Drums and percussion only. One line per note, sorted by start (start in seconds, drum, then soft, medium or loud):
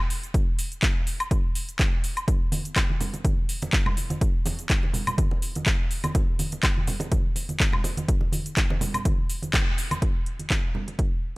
0.10 open hi-hat loud
0.10 shaker medium
0.23 closed hi-hat medium
0.23 shaker soft
0.34 kick loud
0.34 closed hi-hat medium
0.34 shaker soft
0.59 open hi-hat loud
0.59 shaker medium
0.72 closed hi-hat medium
0.72 shaker soft
0.83 kick loud
0.83 clap loud
0.83 closed hi-hat medium
0.83 shaker soft
1.07 open hi-hat loud
1.07 shaker medium
1.20 closed hi-hat medium
1.20 high woodblock medium
1.20 shaker soft
1.31 kick loud
1.31 closed hi-hat medium
1.31 shaker soft
1.55 open hi-hat loud
1.55 shaker medium
1.69 closed hi-hat medium
1.69 shaker soft
1.79 kick loud
1.79 clap loud
1.79 closed hi-hat soft
1.79 shaker soft
2.04 open hi-hat medium
2.04 shaker medium
2.17 closed hi-hat medium
2.17 high woodblock medium
2.17 shaker soft
2.28 kick loud
2.28 closed hi-hat medium
2.28 muted conga medium
2.28 shaker soft
2.52 open hi-hat loud
2.52 high conga medium
2.52 shaker medium
2.65 closed hi-hat medium
2.65 shaker soft
2.76 kick loud
2.76 clap loud
2.76 closed hi-hat medium
2.76 muted conga medium
2.76 high woodblock medium
2.76 shaker soft
2.89 high conga medium
3.00 open hi-hat loud
3.00 low conga medium
3.00 shaker medium
3.13 closed hi-hat medium
3.13 muted conga medium
3.13 shaker soft
3.25 kick loud
3.25 closed hi-hat medium
3.25 high conga medium
3.25 shaker soft
3.49 open hi-hat loud
3.49 shaker medium
3.62 closed hi-hat medium
3.62 muted conga medium
3.62 high conga medium
3.62 shaker soft
3.73 kick loud
3.73 clap loud
3.73 closed hi-hat soft
3.73 shaker soft
3.86 low conga loud
3.86 high woodblock medium
3.97 open hi-hat medium
3.97 muted conga medium
3.97 shaker medium
4.10 closed hi-hat soft
4.10 high conga medium
4.10 shaker soft
4.21 kick loud
4.21 closed hi-hat medium
4.21 shaker soft
4.46 open hi-hat loud
4.46 muted conga medium
4.46 high conga medium
4.46 shaker medium
4.59 closed hi-hat medium
4.59 shaker soft
4.70 kick loud
4.70 clap loud
4.70 closed hi-hat medium
4.70 shaker soft
4.83 muted conga soft
4.83 high conga medium
4.93 open hi-hat medium
4.93 low conga medium
4.93 shaker medium
5.07 closed hi-hat medium
5.07 low conga medium
5.07 high woodblock medium
5.07 shaker soft
5.18 kick loud
5.18 closed hi-hat medium
5.18 high conga medium
5.18 shaker soft
5.31 muted conga medium
5.42 open hi-hat loud
5.42 shaker medium
5.55 closed hi-hat medium
5.55 high conga medium
5.55 shaker soft
5.66 kick loud
5.66 clap loud
5.66 closed hi-hat soft
5.66 muted conga medium
5.66 shaker soft
5.91 open hi-hat medium
5.91 shaker medium
6.04 closed hi-hat soft
6.04 high conga medium
6.04 high woodblock medium
6.04 shaker soft
6.15 kick loud
6.15 closed hi-hat medium
6.15 muted conga medium
6.15 shaker soft
6.39 open hi-hat loud
6.39 high conga medium
6.39 shaker medium
6.52 closed hi-hat medium
6.52 muted conga medium
6.52 shaker soft
6.63 kick loud
6.63 clap loud
6.63 closed hi-hat medium
6.63 high woodblock medium
6.63 shaker soft
6.77 high conga medium
6.87 open hi-hat medium
6.87 low conga loud
6.87 shaker medium
7.00 closed hi-hat medium
7.00 muted conga medium
7.00 shaker soft
7.12 kick loud
7.12 closed hi-hat medium
7.12 high conga loud
7.12 shaker soft
7.36 open hi-hat loud
7.36 muted conga medium
7.36 shaker medium
7.49 closed hi-hat medium
7.49 high conga medium
7.49 shaker soft
7.60 kick loud
7.60 clap loud
7.60 closed hi-hat soft
7.60 shaker soft
7.73 low conga medium
7.73 high woodblock medium
7.84 open hi-hat medium
7.84 muted conga medium
7.84 shaker medium
7.97 closed hi-hat medium
7.97 high conga medium
7.97 shaker soft
8.08 kick loud
8.08 closed hi-hat medium
8.08 shaker soft
8.21 muted conga medium
8.32 open hi-hat loud
8.32 high conga medium
8.32 shaker medium
8.46 closed hi-hat medium
8.46 shaker soft
8.57 kick loud
8.57 clap loud
8.57 closed hi-hat medium
8.57 shaker soft
8.70 muted conga medium
8.70 high conga medium
8.81 open hi-hat medium
8.81 low conga loud
8.81 shaker medium
8.94 closed hi-hat medium
8.94 low conga medium
8.94 high woodblock medium
8.94 shaker soft
9.05 kick loud
9.05 closed hi-hat medium
9.05 muted conga medium
9.05 high conga medium
9.05 shaker soft
9.30 open hi-hat loud
9.30 shaker medium
9.42 closed hi-hat medium
9.42 high conga medium
9.42 shaker soft
9.53 kick loud
9.53 clap loud
9.53 closed hi-hat soft
9.53 muted conga medium
9.53 shaker soft
9.78 open hi-hat medium
9.78 shaker medium
9.91 closed hi-hat medium
9.91 muted conga medium
9.91 high conga medium
9.91 high woodblock medium
9.91 shaker soft
10.02 kick loud
10.02 closed hi-hat medium
10.02 muted conga medium
10.26 closed hi-hat medium
10.39 closed hi-hat medium
10.39 high conga soft
10.50 kick loud
10.50 clap loud
10.50 closed hi-hat medium
10.50 muted conga medium
10.75 low conga medium
10.88 closed hi-hat soft
10.88 muted conga soft
10.99 kick loud
10.99 closed hi-hat medium